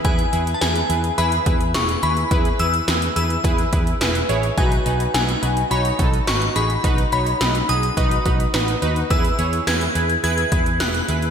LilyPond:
<<
  \new Staff \with { instrumentName = "Synth bell" } { \time 4/4 \key e \major \tempo 4 = 106 gis''8.~ gis''32 a''32 gis''4 b''4 cis'''8 b''8~ | b''8 e'''4 e'''2 r8 | gis''4 gis''4 b''4 cis'''8 b''8~ | b''8 b''4 dis'''2 r8 |
e'''4 gis'''4 gis'''4 fis'''4 | }
  \new Staff \with { instrumentName = "Analog polysynth" } { \time 4/4 \key e \major <e' gis' b'>8 <e' gis' b'>8 <e' gis' b'>8 <e' gis' b'>8 <e' gis' b'>8 <e' gis' b'>8 <e' gis' b'>8 <e' gis' b'>8 | <e' gis' b'>8 <e' gis' b'>8 <e' gis' b'>8 <e' gis' b'>8 <e' gis' b'>8 <e' gis' b'>8 <e' gis' b'>8 <e' gis' cis''>8 | <dis' fis' b'>8 <dis' fis' b'>8 <dis' fis' b'>8 <dis' fis' b'>8 <dis' fis' cis''>8 <dis' fis' a'>8 <dis' fis' b'>8 <dis' fis' gis'>8 | <dis' fis' b'>8 <dis' fis' cis''>8 <dis' fis' b'>8 <dis' fis' gis'>8 <dis' fis' b'>8 <dis' fis' b'>8 <dis' fis' b'>8 <dis' fis' b'>8 |
<e' gis' b'>8 <e' gis' cis''>8 <e' gis' b'>8 <e' gis' b'>8 <e' gis' b'>8 <e' gis' b'>8 <e' gis' b'>8 <e' gis' b'>8 | }
  \new Staff \with { instrumentName = "Fretless electric bass" } { \clef bass \time 4/4 \key e \major e,8 e,8 e,8 e,8 e,8 e,8 e,,8 dis,8 | e,8 e,8 e,8 e,8 e,8 e,8 e,,8 a,,8 | b,,8 b,,8 b,,8 b,,8 b,,8 b,,8 gis,,8 a,,8 | b,,8 b,,8 b,,8 b,,8 b,,8 b,,8 a,,8 dis,8 |
e,8 e,8 e,8 e,8 e,8 e,8 e,,8 dis,8 | }
  \new DrumStaff \with { instrumentName = "Drums" } \drummode { \time 4/4 <hh bd>16 hh16 hh16 hh16 <hh sn>16 hh16 hh16 hh16 hh16 hh16 <hh bd>16 hh16 <hh sn>16 hh16 hh16 hh16 | <hh bd>16 hh16 hh16 hh16 <hh sn>16 hh16 hh16 hh16 <hh bd>16 hh16 <hh bd>16 hh16 <hh sn>16 hh16 hh16 hh16 | <hh bd>16 hh16 hh16 hh16 <hh sn>16 hh16 hh16 hh16 hh16 hh16 <hh bd>16 hh16 <hh sn>16 hh16 hh16 hh16 | <hh bd>16 hh16 hh16 hh16 <hh sn>16 hh16 hh16 hh16 <hh bd>16 hh16 <hh bd>16 hh16 <hh sn>16 hh16 hh16 hh16 |
<hh bd>16 hh16 hh16 hh16 <hh sn>16 hh16 hh16 hh16 hh16 hh16 <hh bd>16 hh16 <hh sn>16 hh16 hh16 hh16 | }
>>